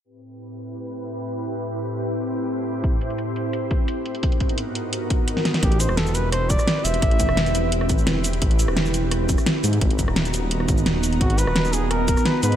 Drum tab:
HH |----------------|----------------|x-xxx-x-x-x-x-xx|xxxxx-x-x-x-x-xx|
SH |----------------|----------------|----------------|----------------|
SD |----------------|----------------|----------------|-------------ooo|
BD |----------------|----------------|o---------o-----|o-o-------o-----|

HH |xxx-x-x-x-x-x-xx|xxx-xxx-x-x-x-xx|xxx-x-x-x-x-x-xx|xxx-xxx-x-x-x-xx|
SH |--x--xx---xx--x-|--x--xx---xx--x-|--x--xx---xx--x-|--x--xx---xx--x-|
SD |---ro---r--ro---|---ro----r--o---|---ro---r--ro---|---ro----r--o---|
BD |o---------o-----|o-o-------o-----|o---------o-----|o-o-------o-----|

HH |xxx-x-x-x-x-x-xx|
SH |--x--xx---xx--x-|
SD |---ro---r--ro---|
BD |o---------o-----|